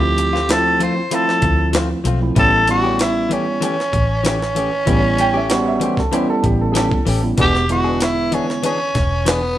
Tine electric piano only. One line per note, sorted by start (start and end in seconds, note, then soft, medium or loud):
0.00 0.36 F3 medium
0.00 0.36 A3 medium
0.00 0.36 C4 medium
0.00 0.36 E4 medium
0.49 0.99 F3 medium
0.49 0.98 A3 medium
0.49 0.99 C4 medium
0.49 0.99 E4 medium
1.12 1.98 F3 medium
1.12 1.98 A3 medium
1.12 1.98 C4 medium
1.12 1.98 E4 medium
2.22 2.34 F3 medium
2.22 2.34 A3 medium
2.22 2.34 C4 medium
2.22 2.34 E4 medium
2.37 2.62 G3 medium
2.37 2.61 B3 medium
2.37 2.61 C#4 medium
2.37 2.62 E4 medium
2.68 3.66 G3 medium
2.68 3.66 B3 medium
2.68 3.66 C#4 medium
2.68 3.66 E4 medium
4.87 5.37 G3 medium
4.87 5.37 B3 medium
4.87 5.37 C#4 medium
4.87 5.37 E4 medium
5.49 5.99 G3 loud
5.49 5.99 B3 medium
5.49 5.99 C#4 medium
5.49 5.99 F#4 loud
6.12 6.99 G3 medium
6.12 6.99 B3 medium
6.12 6.99 C#4 medium
6.12 6.99 E4 loud
7.23 7.35 G3 medium
7.23 7.35 B3 medium
7.23 7.35 C#4 medium
7.23 7.35 E4 medium
7.38 7.63 G#3 medium
7.38 7.63 B3 medium
7.38 7.63 D4 medium
7.38 7.63 F#4 medium
7.70 8.68 D3 medium
7.70 8.68 G#3 medium
7.70 8.68 B3 medium
7.70 8.68 E4 medium